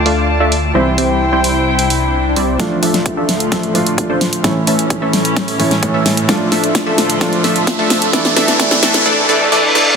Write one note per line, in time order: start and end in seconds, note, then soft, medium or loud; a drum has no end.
0.00 0.73 D2 medium
0.00 0.72 F3 medium
0.00 0.72 A3 medium
0.00 0.72 D4 medium
0.00 0.73 F4 medium
0.00 0.73 D5 medium
0.00 0.71 A5 medium
0.06 0.38 A3 medium
0.06 0.38 D4 medium
0.06 0.38 F4 medium
0.06 0.38 D5 medium
0.06 0.38 F5 medium
0.06 open hi-hat medium
0.40 0.54 A3 medium
0.40 0.54 D4 medium
0.40 0.54 F4 medium
0.40 0.54 D5 medium
0.40 0.54 E5 loud
0.52 open hi-hat loud
0.74 2.57 C2 medium
0.74 2.56 E3 medium
0.74 2.57 G3 medium
0.74 0.89 G3 medium
0.74 0.89 C4 medium
0.74 2.57 C4 medium
0.74 0.89 E4 medium
0.74 2.58 E4 medium
0.74 2.57 E4 medium
0.74 0.89 C5 medium
0.74 2.58 C5 medium
0.74 0.89 E5 medium
0.74 2.58 G5 medium
0.98 1.20 G3 medium
0.98 1.20 C4 medium
0.98 1.20 E4 medium
0.98 1.20 C5 medium
0.98 1.20 G5 medium
0.98 open hi-hat loud
1.33 1.88 G3 medium
1.33 1.88 C4 medium
1.33 1.88 E4 medium
1.33 1.88 C5 medium
1.33 1.88 G5 medium
1.44 open hi-hat medium
1.67 swell medium
1.79 open hi-hat medium
1.90 open hi-hat loud
2.36 2.57 G3 medium
2.36 2.57 C4 medium
2.36 2.57 E4 medium
2.36 2.57 C5 medium
2.36 2.57 D5 loud
2.36 open hi-hat loud
2.58 4.42 D2 medium
2.58 4.42 A2 medium
2.58 3.72 F3 medium
2.58 4.42 F3 medium
2.58 2.80 F3 medium
2.58 3.72 A3 medium
2.58 2.80 A3 medium
2.58 2.80 D4 medium
2.58 3.72 D4 medium
2.58 3.73 F4 medium
2.58 2.80 A4 medium
2.58 kick loud
2.58 snare soft
2.58 closed hi-hat medium
2.58 riser medium
2.83 3.15 F3 loud
2.83 3.15 A3 medium
2.83 3.15 D4 medium
2.83 3.15 A4 medium
2.83 3.15 E5 loud
2.83 open hi-hat loud
2.94 snare soft
2.94 closed hi-hat medium
3.06 kick loud
3.06 closed hi-hat medium
3.17 3.49 F3 medium
3.17 3.49 A3 medium
3.17 3.49 D4 medium
3.17 3.49 A4 medium
3.17 3.49 E5 medium
3.29 snare medium
3.29 open hi-hat loud
3.40 closed hi-hat medium
3.52 3.72 F3 medium
3.52 3.72 A3 medium
3.52 3.72 D4 medium
3.52 3.72 A4 medium
3.52 3.72 E5 loud
3.52 kick loud
3.52 snare medium
3.52 closed hi-hat medium
3.63 closed hi-hat soft
3.74 4.41 F3 medium
3.74 4.07 F3 medium
3.74 4.41 A3 medium
3.74 4.07 A3 medium
3.74 4.07 D4 medium
3.74 4.42 D4 medium
3.74 4.42 F4 medium
3.74 4.07 A4 medium
3.74 4.07 D5 medium
3.74 open hi-hat loud
3.87 closed hi-hat medium
3.98 kick loud
3.98 closed hi-hat medium
4.10 4.23 F3 medium
4.10 4.23 A3 medium
4.10 4.23 D4 medium
4.10 4.23 A4 medium
4.10 4.23 C5 loud
4.21 snare medium
4.21 open hi-hat loud
4.33 closed hi-hat medium
4.43 5.56 A2 medium
4.43 8.10 A2 medium
4.43 5.57 E3 medium
4.43 4.58 E3 medium
4.43 6.27 E3 medium
4.43 5.57 A3 medium
4.43 4.58 A3 medium
4.43 6.27 C#4 medium
4.43 4.58 C#4 medium
4.43 5.57 C#4 medium
4.43 5.57 E4 medium
4.43 4.58 A4 medium
4.43 4.58 C#5 medium
4.43 kick loud
4.43 snare medium
4.43 closed hi-hat medium
4.67 4.89 E3 medium
4.67 4.89 A3 medium
4.67 4.89 C#4 medium
4.67 4.89 A4 medium
4.67 4.89 E5 medium
4.67 open hi-hat loud
4.79 closed hi-hat medium
4.90 kick loud
4.90 closed hi-hat medium
5.02 5.57 E3 medium
5.02 5.57 A3 medium
5.02 5.57 C#4 medium
5.02 5.57 A4 medium
5.02 5.57 E5 medium
5.13 snare medium
5.13 open hi-hat loud
5.25 closed hi-hat medium
5.37 kick loud
5.37 snare medium
5.37 closed hi-hat medium
5.48 open hi-hat medium
5.59 5.80 A2 medium
5.59 5.80 E3 medium
5.59 5.73 E3 medium
5.59 5.73 A3 medium
5.59 5.80 A3 medium
5.59 5.73 C#4 medium
5.59 5.80 C#4 medium
5.59 5.80 E4 medium
5.59 5.73 A4 medium
5.59 5.73 C#5 loud
5.59 open hi-hat loud
5.71 snare medium
5.71 closed hi-hat soft
5.82 6.26 A2 medium
5.82 6.26 E3 medium
5.82 6.26 A3 medium
5.82 6.26 C#4 medium
5.82 6.26 A4 loud
5.82 kick loud
5.82 closed hi-hat medium
5.94 6.08 E3 medium
5.94 6.08 A3 medium
5.94 6.08 C#4 medium
5.94 6.08 A4 medium
5.94 6.08 E5 medium
6.06 snare medium
6.06 open hi-hat loud
6.17 closed hi-hat medium
6.28 8.12 D2 medium
6.28 7.18 F3 medium
6.28 6.49 F3 medium
6.28 8.12 F3 medium
6.28 7.19 A3 medium
6.28 6.49 A3 medium
6.28 6.49 D4 medium
6.28 7.19 D4 medium
6.28 7.20 F4 medium
6.28 6.49 A4 medium
6.28 6.49 D5 medium
6.28 kick loud
6.28 snare medium
6.28 closed hi-hat medium
6.52 6.84 F3 medium
6.52 6.84 A3 medium
6.52 6.84 D4 medium
6.52 6.84 A4 medium
6.52 6.84 E5 loud
6.52 snare medium
6.52 open hi-hat loud
6.64 closed hi-hat medium
6.75 kick loud
6.75 snare medium
6.75 closed hi-hat medium
6.87 7.18 F3 medium
6.87 7.18 A3 medium
6.87 7.18 D4 medium
6.87 7.18 A4 medium
6.87 7.18 E5 medium
6.98 snare medium
6.98 open hi-hat loud
7.10 closed hi-hat medium
7.20 8.11 F3 medium
7.20 7.41 F3 medium
7.20 8.11 A3 medium
7.20 7.41 A3 medium
7.20 7.41 D4 medium
7.20 8.12 D4 medium
7.20 8.12 F4 medium
7.20 7.41 A4 medium
7.20 7.41 D5 medium
7.20 kick loud
7.20 snare medium
7.20 closed hi-hat medium
7.33 closed hi-hat soft
7.44 7.76 F3 medium
7.44 7.76 A3 medium
7.44 7.76 D4 medium
7.44 7.76 A4 medium
7.44 7.76 E5 loud
7.44 snare medium
7.44 open hi-hat loud
7.56 closed hi-hat soft
7.67 kick loud
7.67 snare medium
7.67 closed hi-hat medium
7.79 8.11 F3 medium
7.79 8.11 A3 medium
7.79 8.11 D4 medium
7.79 8.11 A4 medium
7.79 8.11 E5 loud
7.90 snare medium
7.90 open hi-hat loud
8.02 closed hi-hat medium
8.12 9.05 C2 medium
8.12 9.05 G2 medium
8.12 8.57 E3 medium
8.12 9.05 E3 medium
8.12 8.34 E3 medium
8.12 8.58 A3 medium
8.12 8.34 A3 medium
8.12 8.34 D4 medium
8.12 8.58 D4 medium
8.12 8.58 E4 medium
8.12 8.34 A4 medium
8.12 8.34 D5 medium
8.12 kick loud
8.12 snare loud
8.12 closed hi-hat medium
8.25 snare medium
8.25 closed hi-hat soft
8.36 8.58 E3 loud
8.36 8.58 A3 medium
8.36 8.58 D4 medium
8.36 8.58 A4 medium
8.36 8.58 E5 loud
8.36 snare medium
8.36 open hi-hat loud
8.48 snare medium
8.48 closed hi-hat medium
8.58 9.03 E3 medium
8.58 8.80 E3 medium
8.58 9.04 A3 medium
8.58 8.80 A3 medium
8.58 8.80 D4 medium
8.58 9.04 D4 medium
8.58 9.05 E4 medium
8.58 8.80 A4 medium
8.58 8.80 D5 medium
8.58 kick loud
8.58 snare loud
8.58 closed hi-hat medium
8.71 snare medium
8.71 closed hi-hat soft
8.83 9.04 E3 loud
8.83 9.04 A3 medium
8.83 9.04 D4 medium
8.83 9.04 A4 medium
8.83 9.04 E5 loud
8.83 snare loud
8.83 open hi-hat loud
8.94 snare medium
8.94 closed hi-hat medium
9.06 9.26 E3 medium
9.06 9.26 A3 medium
9.06 9.26 D4 medium
9.06 9.26 A4 medium
9.06 9.26 D5 loud
9.06 reverse cymbal medium
9.29 9.49 E3 medium
9.29 9.49 A3 medium
9.29 9.49 D4 medium
9.29 9.49 A4 medium
9.29 9.49 D5 loud
9.52 9.72 E3 medium
9.52 9.72 A3 medium
9.52 9.72 D4 medium
9.52 9.72 A4 medium
9.52 9.72 D5 loud
9.75 9.95 E3 medium
9.75 9.95 A3 medium
9.75 9.95 D4 medium
9.75 9.95 A4 medium
9.75 9.95 D5 loud